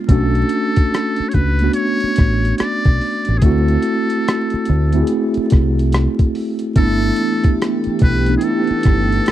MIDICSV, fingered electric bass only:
0, 0, Header, 1, 3, 480
1, 0, Start_track
1, 0, Tempo, 833333
1, 51, Time_signature, 4, 2, 24, 8
1, 5367, End_track
2, 0, Start_track
2, 0, Title_t, "Fingered electric bass"
2, 0, Program_c, 0, 33
2, 56, Note_on_c, 0, 35, 90
2, 245, Note_off_c, 0, 35, 0
2, 779, Note_on_c, 0, 37, 78
2, 967, Note_off_c, 0, 37, 0
2, 1262, Note_on_c, 0, 33, 80
2, 1449, Note_off_c, 0, 33, 0
2, 1650, Note_on_c, 0, 35, 75
2, 1718, Note_off_c, 0, 35, 0
2, 1892, Note_on_c, 0, 33, 81
2, 1959, Note_off_c, 0, 33, 0
2, 1978, Note_on_c, 0, 38, 94
2, 2166, Note_off_c, 0, 38, 0
2, 2704, Note_on_c, 0, 38, 88
2, 2890, Note_off_c, 0, 38, 0
2, 3187, Note_on_c, 0, 36, 86
2, 3492, Note_off_c, 0, 36, 0
2, 3899, Note_on_c, 0, 31, 95
2, 4087, Note_off_c, 0, 31, 0
2, 4624, Note_on_c, 0, 35, 84
2, 4810, Note_off_c, 0, 35, 0
2, 5106, Note_on_c, 0, 31, 86
2, 5291, Note_off_c, 0, 31, 0
2, 5367, End_track
3, 0, Start_track
3, 0, Title_t, "Muted fingered electric bass strokes"
3, 691, Note_on_c, 9, 29, 39
3, 748, Note_off_c, 9, 29, 0
3, 1172, Note_on_c, 9, 29, 41
3, 1229, Note_off_c, 9, 29, 0
3, 1500, Note_on_c, 9, 29, 39
3, 1557, Note_off_c, 9, 29, 0
3, 2613, Note_on_c, 9, 29, 39
3, 2671, Note_off_c, 9, 29, 0
3, 3094, Note_on_c, 9, 29, 42
3, 3152, Note_off_c, 9, 29, 0
3, 4532, Note_on_c, 9, 29, 43
3, 4589, Note_off_c, 9, 29, 0
3, 5014, Note_on_c, 9, 29, 44
3, 5072, Note_off_c, 9, 29, 0
3, 5348, Note_on_c, 9, 29, 43
3, 5367, Note_off_c, 9, 29, 0
3, 5367, End_track
0, 0, End_of_file